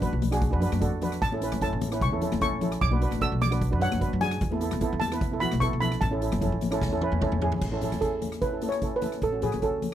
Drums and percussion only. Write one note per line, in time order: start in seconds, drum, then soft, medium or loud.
0.02 kick medium
0.02 closed hi-hat medium
0.02 low conga medium
0.22 closed hi-hat medium
0.22 high conga medium
0.22 low conga medium
0.32 cross-stick medium
0.32 closed hi-hat medium
0.41 kick loud
0.41 closed hi-hat medium
0.62 closed hi-hat medium
0.62 low conga medium
0.72 cross-stick medium
0.72 closed hi-hat medium
0.72 high conga medium
0.81 kick medium
0.81 closed hi-hat medium
1.02 closed hi-hat medium
1.02 low conga medium
1.12 cross-stick medium
1.12 closed hi-hat medium
1.22 kick loud
1.22 closed hi-hat medium
1.32 high conga medium
1.42 closed hi-hat medium
1.52 cross-stick medium
1.52 closed hi-hat medium
1.52 high conga medium
1.61 kick medium
1.61 closed hi-hat medium
1.81 closed hi-hat medium
1.81 high conga medium
1.81 low conga medium
1.92 cross-stick medium
1.92 closed hi-hat medium
2.01 kick loud
2.01 closed hi-hat medium
2.21 closed hi-hat medium
2.21 low conga medium
2.32 cross-stick medium
2.32 closed hi-hat medium
2.32 high conga medium
2.41 kick medium
2.41 closed hi-hat medium
2.61 closed hi-hat medium
2.61 low conga medium
2.72 cross-stick medium
2.72 closed hi-hat medium
2.81 kick loud
2.81 closed hi-hat medium
2.92 high conga medium
3.02 closed hi-hat medium
3.11 cross-stick medium
3.11 closed hi-hat medium
3.11 high conga medium
3.21 kick medium
3.21 closed hi-hat medium
3.41 closed hi-hat medium
3.41 high conga medium
3.41 low conga medium
3.52 cross-stick loud
3.52 closed hi-hat medium
3.61 kick loud
3.61 closed hi-hat medium
3.81 closed hi-hat medium
3.81 low conga medium
3.92 cross-stick medium
3.92 closed hi-hat medium
3.92 high conga medium
4.01 kick medium
4.01 closed hi-hat medium
4.21 closed hi-hat medium
4.21 low conga medium
4.31 cross-stick medium
4.31 closed hi-hat medium
4.41 kick loud
4.41 closed hi-hat medium
4.52 high conga medium
4.61 closed hi-hat medium
4.71 cross-stick medium
4.71 closed hi-hat medium
4.71 high conga medium
4.81 kick medium
4.81 closed hi-hat medium
5.01 closed hi-hat medium
5.01 high conga medium
5.01 low conga medium
5.12 cross-stick medium
5.12 closed hi-hat medium
5.21 kick loud
5.21 closed hi-hat medium
5.41 closed hi-hat medium
5.41 low conga medium
5.52 cross-stick medium
5.52 closed hi-hat medium
5.52 high conga medium
5.61 kick medium
5.61 closed hi-hat medium
5.82 closed hi-hat medium
5.82 low conga medium
5.92 cross-stick medium
5.92 closed hi-hat medium
6.01 kick loud
6.01 closed hi-hat medium
6.22 closed hi-hat medium
6.32 cross-stick medium
6.32 closed hi-hat medium
6.32 high conga medium
6.42 kick medium
6.42 closed hi-hat medium
6.42 low conga medium
6.61 closed hi-hat medium
6.61 high conga medium
6.61 low conga medium
6.72 cross-stick medium
6.72 closed hi-hat medium
6.82 kick loud
6.82 snare medium
7.01 high tom medium
7.13 high conga medium
7.22 kick medium
7.22 mid tom medium
7.22 high conga medium
7.32 mid tom medium
7.32 high conga medium
7.42 floor tom loud
7.42 low conga medium
7.52 floor tom medium
7.52 low conga medium
7.61 kick loud
7.61 crash medium
7.81 closed hi-hat medium
7.81 low conga medium
7.92 cross-stick medium
7.92 closed hi-hat medium
7.92 high conga medium
8.01 kick medium
8.01 closed hi-hat medium
8.22 closed hi-hat medium
8.22 high conga medium
8.22 low conga medium
8.32 cross-stick medium
8.32 closed hi-hat medium
8.41 kick loud
8.41 closed hi-hat medium
8.62 closed hi-hat medium
8.62 high conga medium
8.72 cross-stick medium
8.72 closed hi-hat medium
8.82 kick medium
8.82 closed hi-hat medium
9.02 closed hi-hat medium
9.02 high conga medium
9.02 low conga medium
9.12 cross-stick medium
9.12 closed hi-hat medium
9.21 kick medium
9.21 closed hi-hat medium
9.42 closed hi-hat medium
9.42 low conga medium
9.52 cross-stick medium
9.52 closed hi-hat medium
9.52 high conga medium
9.62 kick medium
9.62 closed hi-hat medium
9.82 closed hi-hat medium
9.82 high conga medium
9.82 low conga medium